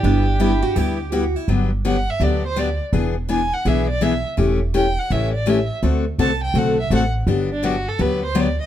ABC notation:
X:1
M:4/4
L:1/16
Q:"Swing" 1/4=166
K:G
V:1 name="Violin"
G12 z4 | z4 f2 e2 d2 c2 d2 z2 | z4 ^g2 f2 e2 d2 e2 z2 | z4 g2 f2 e2 d2 e2 z2 |
z4 a2 g2 f2 e2 f2 z2 | z2 D2 F2 A2 B2 c2 d2 _e2 |]
V:2 name="Steel-string acoustic guitar"
D4 E2 F2 G4 F2 E2 | z16 | z16 | z16 |
z16 | z16 |]
V:3 name="Steel-string acoustic guitar"
[G,B,EG]2 z2 [G,B,EG] z3 [G,B,EG]2 z2 [G,B,EG] z3 | [D,F,B,DG]2 z2 [D,F,B,DG] z3 [D,F,B,DG]2 z2 [D,F,B,DG] z3 | [E,B,D^G]2 z2 [E,B,DG] z3 [E,B,DG]2 z2 [E,B,DG] z3 | [E,A,^CG]2 z2 [E,A,CG] z3 [E,A,CG]2 z2 [E,A,CG] z3 |
[D,A,CFA]2 z2 [D,A,CFA] z3 [D,A,CFA]2 z2 [D,A,CFA] z3 | [D,F,B,DG]2 z2 [D,F,B,DG] z3 [D,F,B,DG]2 z2 [D,F,B,DG] z3 |]
V:4 name="Upright bass" clef=bass
G,,,8 D,,8 | G,,,8 D,,8 | E,,,8 B,,,8 | E,,,8 A,,,8 |
D,,4 C,,4 B,,,4 A,,,4 | G,,,8 D,,8 |]